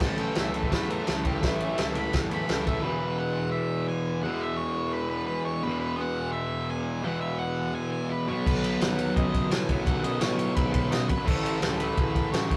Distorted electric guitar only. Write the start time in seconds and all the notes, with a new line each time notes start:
Already playing: A2
0.00 E3 A3
0.17 E3 A3
0.33 A2 E3 A3
0.52 A2 E3 A3
0.68 A2 E3 A3
0.86 A2 E3 A3
1.05 A2 E3 A3
1.22 E3 A3
1.41 A2 E3 A3
1.60 A3
1.64 E3
1.76 A2 E3 A3
1.93 A2 E3 A3
2.12 A2 E3 A3
2.30 A2 E3 A3
2.46 A2 E3 A3
2.65 E3 A3
2.81 E2 B2 E3
4.23 E2 B2 E3
5.63 E2 B2 E3
7.03 E2 B2
7.07 E3
8.28 B2 F#3
8.32 B3
9.69 B2 F#3 B3
11.24 A2 E3
11.28 A3